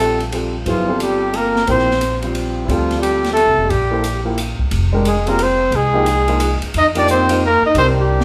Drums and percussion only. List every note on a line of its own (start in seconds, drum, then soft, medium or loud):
0.20 ride soft
0.32 ride medium
0.66 ride medium
1.00 hi-hat pedal soft
1.00 ride medium
1.34 ride medium
1.56 snare soft
1.67 ride medium
1.79 snare soft
1.91 snare soft
2.01 hi-hat pedal soft
2.01 ride medium
2.22 ride soft
2.35 ride medium
2.69 ride medium
2.91 snare soft
2.91 ride soft
3.03 hi-hat pedal soft
3.03 ride medium
3.24 snare soft
3.24 ride soft
3.37 ride medium
3.70 ride medium
4.04 hi-hat pedal medium
4.04 ride medium
4.38 hi-hat pedal medium
4.38 ride medium
4.59 kick medium
4.71 ride medium
5.05 hi-hat pedal medium
5.05 ride medium
5.27 ride soft
5.39 ride medium
5.72 ride medium
6.06 hi-hat pedal medium
6.06 ride medium
6.28 ride soft
6.40 hi-hat pedal medium
6.40 ride medium
6.62 ride soft
6.74 ride medium
6.95 ride medium
7.08 hi-hat pedal medium
7.29 ride medium
7.75 ride medium
8.21 snare medium